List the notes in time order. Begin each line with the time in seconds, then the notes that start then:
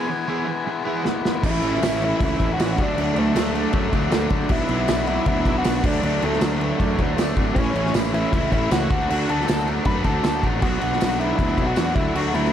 Already playing: E3 G#5
0.07 G#3 B3 E4, muted overdriven electric guitar stroke
0.26 E3 G#3 B3 E4 G#4
0.45 G#3 B3 E4, muted overdriven electric guitar stroke
0.65 E3 G#3 B3 E4, muted overdriven electric guitar stroke
0.84 E3 G#3 B3 E4 G#4
1.03 E3 G#3 B3 E4, muted overdriven electric guitar stroke, snare
1.23 G#3 B3 E4, muted overdriven electric guitar stroke, snare
1.43 A1 A2 E3 A3 C#4 E4, kick, crash
1.62 A1 A2 E3 A3 C#4 E4, crash
1.74 snare
1.82 A1 A2 E3 A3 C#4 E4, snare, tambourine, crash
2.01 A2 E3 A3 C#4 E4, crash
2.05 E4
2.20 C#2 A2 E3 A3 C#4 E4, kick, crash
2.39 A1 A2 E3 A3 C#4 E4, kick, crash
2.54 F#4
2.58 A1 A2 E3 A3 C#4 E4, snare, tambourine, crash
2.78 D2 D3 F#3 A3 D4, kick, crash
2.82 D4
2.95 D2 D3 F#3 A3 D4, crash
3.01 D4
3.15 D2 D3 F#3 A3 D4, crash
3.34 D2 D3 F#3 A3 D4, snare, tambourine, crash
3.54 D3 F#3 A3 D4, crash
3.73 F#2 D3 F#3 A3 D4, kick, crash
3.92 D2 D3 F#3 A3 D4, kick, crash
4.11 D2 D3 F#3 A3 D4, snare, tambourine, crash
4.30 D3 F#3 A3 D4, kick, crash
4.49 B1 B2 F#3 B3 D4 E4, kick, crash
4.68 B1 B2 F#3 B3 D4, crash
4.88 B1 B2 F#3 B3 D4, snare, tambourine, crash
5.06 B2 F#3 B3 D4 E4, crash
5.25 D2 B2 F#3 B3 D4 E4, kick, crash
5.45 B1 B2 F#3 B3 D4, kick, crash
5.58 F#4
5.63 B1 B2 F#3 B3 D4, snare, tambourine, crash
5.82 D2 D3 F#3 A3 D4, kick, crash
6.01 D2 D3 F#3 A3 D4, crash
6.06 D4
6.20 D2 D3 F#3 A3 D4, crash
6.24 A3
6.33 snare
6.38 D2 D3 F#3 A3 D4, snare, tambourine, crash
6.58 D3 F#3 A3 D4 B4, crash
6.71 C#5
6.79 F#2 D3 F#3 A3 D4 D5, kick, crash
6.92 C#5
6.98 D2 D3 F#3 A3 D4 B4, kick, crash
7.12 C#5
7.17 D2 D3 F#3 A3 D4 D5, snare, tambourine, crash
7.36 G#1 D3 F#3 A3 D4, kick, crash
7.55 A1 A2 E3 A3 C#4 E4, kick, crash
7.75 A1 A2 E3 A3 C#4 E4, crash
7.86 snare
7.94 A1 A2 E3 A3 C#4 E4, snare, tambourine, crash
8.14 A2 E3 A3 C#4 E4, crash
8.32 C#2 A2 E3 A3 C#4 E4, kick, crash
8.50 A1 A2 E3 A3 C#4 E4, kick, crash
8.71 C#2 A2 E3 A3 C#4 E4 F#4, snare, tambourine, crash
8.89 D2 D3 F#3 A3 D4 F#4, kick, crash
9.08 D2 D3 F#3 A3 D4 F#4, crash
9.28 D2 D3 F#3 A3 D4 F#4 A4, crash
9.41 snare
9.46 D2 D3 F#3 A3 D4 F#4, snare, tambourine, crash
9.65 D3 F#3 A3 D4 F#4, crash
9.84 F#2 D3 F#3 A3 D4 F#4 B4, kick, crash
10.04 D2 D3 F#3 A3 D4 F#4 A4, kick, crash
10.23 D2 D3 F#3 A3 D4 F#4, snare, tambourine, crash
10.42 A1 D3 F#3 A3 D4 F#4, kick, crash
10.60 B1 B2 F#3 B3 D4 F#4, kick, crash
10.80 B1 B2 F#3 B3 D4 F#4, crash
10.93 snare
10.99 B1 B2 F#3 B3 D4 F#4, snare, tambourine, crash
11.18 B2 F#3 B3 D4 E4 F#4, crash
11.37 D2 B2 F#3 B3 D4 E4 F#4, kick, crash
11.56 B1 B2 F#3 B3 D4 F#4, kick, crash
11.67 F#4
11.75 E2 B2 F#3 B3 D4 F#4, snare, tambourine, crash
11.94 D2 D3 F#3 A3 D4 E4 F#4, kick, crash
12.14 D2 D3 F#3 A3 D4 F#4, crash
12.33 D2 D3 F#3 A3 D4 E4 F#4, crash
12.45 snare